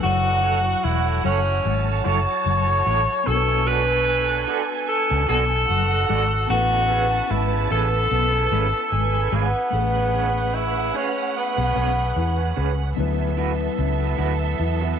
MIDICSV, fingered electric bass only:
0, 0, Header, 1, 2, 480
1, 0, Start_track
1, 0, Key_signature, 3, "major"
1, 0, Tempo, 808625
1, 18, Time_signature, 4, 2, 24, 8
1, 8901, End_track
2, 0, Start_track
2, 0, Title_t, "Fingered electric bass"
2, 0, Program_c, 0, 33
2, 23, Note_on_c, 0, 30, 107
2, 436, Note_off_c, 0, 30, 0
2, 504, Note_on_c, 0, 28, 101
2, 709, Note_off_c, 0, 28, 0
2, 742, Note_on_c, 0, 30, 88
2, 948, Note_off_c, 0, 30, 0
2, 982, Note_on_c, 0, 32, 91
2, 1188, Note_off_c, 0, 32, 0
2, 1224, Note_on_c, 0, 30, 92
2, 1336, Note_off_c, 0, 30, 0
2, 1459, Note_on_c, 0, 30, 96
2, 1666, Note_off_c, 0, 30, 0
2, 1701, Note_on_c, 0, 33, 81
2, 1814, Note_off_c, 0, 33, 0
2, 1942, Note_on_c, 0, 35, 110
2, 2637, Note_off_c, 0, 35, 0
2, 3034, Note_on_c, 0, 37, 92
2, 3126, Note_off_c, 0, 37, 0
2, 3142, Note_on_c, 0, 35, 93
2, 3348, Note_off_c, 0, 35, 0
2, 3382, Note_on_c, 0, 30, 101
2, 3588, Note_off_c, 0, 30, 0
2, 3620, Note_on_c, 0, 32, 83
2, 3826, Note_off_c, 0, 32, 0
2, 3858, Note_on_c, 0, 33, 101
2, 4273, Note_off_c, 0, 33, 0
2, 4337, Note_on_c, 0, 32, 96
2, 4545, Note_off_c, 0, 32, 0
2, 4577, Note_on_c, 0, 33, 89
2, 4785, Note_off_c, 0, 33, 0
2, 4817, Note_on_c, 0, 35, 86
2, 5025, Note_off_c, 0, 35, 0
2, 5055, Note_on_c, 0, 32, 89
2, 5171, Note_off_c, 0, 32, 0
2, 5296, Note_on_c, 0, 32, 93
2, 5504, Note_off_c, 0, 32, 0
2, 5535, Note_on_c, 0, 32, 104
2, 5651, Note_off_c, 0, 32, 0
2, 5774, Note_on_c, 0, 33, 102
2, 6473, Note_off_c, 0, 33, 0
2, 6873, Note_on_c, 0, 35, 78
2, 6965, Note_off_c, 0, 35, 0
2, 6980, Note_on_c, 0, 35, 78
2, 7187, Note_off_c, 0, 35, 0
2, 7221, Note_on_c, 0, 40, 96
2, 7427, Note_off_c, 0, 40, 0
2, 7464, Note_on_c, 0, 37, 84
2, 7669, Note_off_c, 0, 37, 0
2, 7705, Note_on_c, 0, 38, 103
2, 8117, Note_off_c, 0, 38, 0
2, 8183, Note_on_c, 0, 37, 90
2, 8389, Note_off_c, 0, 37, 0
2, 8423, Note_on_c, 0, 38, 87
2, 8629, Note_off_c, 0, 38, 0
2, 8663, Note_on_c, 0, 40, 87
2, 8869, Note_off_c, 0, 40, 0
2, 8901, End_track
0, 0, End_of_file